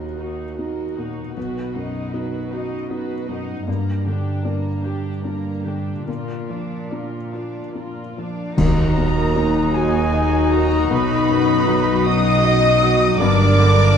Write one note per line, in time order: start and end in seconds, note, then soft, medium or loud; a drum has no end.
0.00 1.32 D#2 soft
0.00 1.33 D#2 soft
0.00 0.98 A#2 soft
0.00 1.40 D#3 soft
0.00 0.22 A#3 soft
0.00 0.43 D#4 soft
0.00 0.19 F#4 soft
0.00 0.19 A#4 soft
0.00 0.21 D#5 soft
0.00 0.58 D#5 soft
0.17 0.58 D#4 soft
0.17 0.59 F#4 soft
0.17 0.82 F#4 soft
0.17 0.97 F#4 soft
0.22 0.60 F#5 soft
0.58 1.21 D#4 soft
0.58 0.94 F#4 soft
0.58 0.95 A#4 soft
0.58 2.12 D#5 soft
0.58 0.96 D#5 soft
0.95 1.37 A#2 soft
0.95 1.35 D#4 soft
0.95 1.37 F#4 soft
0.95 1.74 F#4 soft
0.95 1.37 F#5 soft
1.34 3.63 B1 soft
1.34 3.63 B2 soft
1.34 3.70 B2 soft
1.34 1.71 F#4 soft
1.34 1.72 B4 soft
1.34 1.73 D#5 soft
1.74 2.37 F#2 soft
1.74 2.13 D#4 soft
1.74 2.51 F#4 soft
1.74 2.13 D#5 soft
1.74 2.14 F#5 soft
2.12 2.75 D#4 soft
2.12 2.51 F#4 soft
2.12 2.53 B4 soft
2.12 2.89 D#5 soft
2.12 2.52 D#5 soft
2.51 2.90 D#4 soft
2.51 3.27 F#4 soft
2.51 3.13 F#4 soft
2.51 2.91 D#5 soft
2.51 2.91 F#5 soft
2.89 3.52 D#4 soft
2.89 3.25 F#4 soft
2.89 3.26 B4 soft
2.89 3.70 D#5 soft
2.89 3.26 D#5 soft
3.27 3.67 F#2 soft
3.27 3.67 D#4 soft
3.27 3.70 F#4 soft
3.27 3.68 D#5 soft
3.27 3.67 F#5 soft
3.66 6.03 G2 soft
3.66 6.11 G2 medium
3.66 6.04 G2 soft
3.66 4.03 A#3 soft
3.66 4.04 A#4 soft
3.66 4.02 A#5 soft
4.05 4.69 D3 soft
4.05 4.45 D4 soft
4.05 4.83 G4 soft
4.05 4.45 G4 soft
4.05 4.44 G5 soft
4.44 4.84 A#3 soft
4.44 5.08 D4 soft
4.44 4.84 A#4 soft
4.44 5.23 D5 soft
4.44 4.84 A#5 soft
4.83 5.24 D4 soft
4.83 5.63 G4 soft
4.83 5.24 G4 soft
4.83 5.49 G4 soft
4.83 5.24 G5 soft
5.24 5.63 A#3 soft
5.24 5.91 D4 soft
5.24 5.63 A#4 soft
5.24 6.89 D5 soft
5.24 5.63 A#5 soft
5.64 6.08 D3 soft
5.64 6.08 D4 soft
5.64 6.10 G4 soft
5.64 6.07 G4 soft
5.64 6.07 G5 soft
6.07 8.61 A#2 soft
6.07 8.54 A#2 soft
6.07 8.37 A#2 soft
6.07 6.47 F4 soft
6.07 6.47 A#4 soft
6.07 6.46 D5 soft
6.48 7.17 F3 soft
6.48 6.92 D4 soft
6.48 7.31 F4 soft
6.48 6.91 D5 soft
6.48 6.91 F5 soft
6.90 7.59 D4 soft
6.90 7.33 F4 soft
6.90 7.34 A#4 soft
6.90 7.33 D5 soft
6.90 7.74 D5 soft
7.33 7.75 D4 soft
7.33 8.15 F4 soft
7.33 8.01 F4 soft
7.33 7.76 D5 soft
7.33 7.75 F5 soft
7.74 8.42 D4 soft
7.74 8.14 F4 soft
7.74 8.14 A#4 soft
7.74 8.13 D5 soft
7.74 8.61 D5 soft
8.16 8.58 F3 soft
8.16 8.57 D4 soft
8.16 8.61 F4 soft
8.16 8.58 D5 soft
8.16 8.57 F5 soft
8.56 10.87 D#2 medium
8.56 10.94 D#3 medium
8.56 9.71 D#3 medium
8.56 13.16 F#3 medium
8.56 13.15 D#4 medium
8.56 13.16 D#4 medium
8.56 13.15 F#4 medium
8.56 13.22 F#4 medium
8.56 9.72 A#4 medium
8.56 13.16 D#5 medium
8.56 9.71 A#5 loud
8.56 9.75 A#5 medium
8.56 concert bass drum medium
8.56 crash medium
8.96 9.60 A#2 medium
8.96 10.12 F#4 soft
9.35 10.51 D#4 medium
9.35 9.98 D#4 medium
9.74 10.94 A#3 medium
9.74 10.38 F#4 medium
9.74 10.51 G#4 medium
9.74 10.53 G#5 medium
9.74 10.52 G#5 medium
10.13 11.28 F#4 medium
10.13 10.76 D#5 medium
10.52 12.05 D#4 medium
10.52 10.91 F#4 medium
10.52 10.92 A#4 medium
10.52 10.91 A#5 loud
10.52 10.90 A#5 medium
10.90 13.16 B1 medium
10.90 13.16 B2 medium
10.90 13.23 B2 medium
10.90 12.07 B4 medium
10.90 12.03 B5 loud
10.90 12.06 B5 loud
11.29 11.90 F#2 medium
11.29 12.43 F#4 medium
11.68 12.82 F#3 medium
11.68 12.29 D#4 medium
12.05 13.23 D#4 medium
12.05 12.68 F#4 medium
12.05 13.20 D#5 loud
12.05 13.17 D#6 loud
12.05 13.18 D#6 loud
12.45 13.23 F#4 medium
12.45 13.05 D#5 medium
12.83 13.23 F#3 medium
12.83 13.20 F#4 medium
13.19 13.98 G1 loud
13.19 13.98 G2 medium
13.19 13.98 G2 loud
13.19 13.98 G2 medium
13.19 13.98 A#3 loud
13.19 13.98 D4 loud
13.19 13.98 D4 medium
13.19 13.98 A#4 medium
13.19 13.98 A#4 loud
13.19 13.98 D5 loud
13.19 13.98 D6 loud
13.58 13.98 D3 medium
13.58 13.98 G4 medium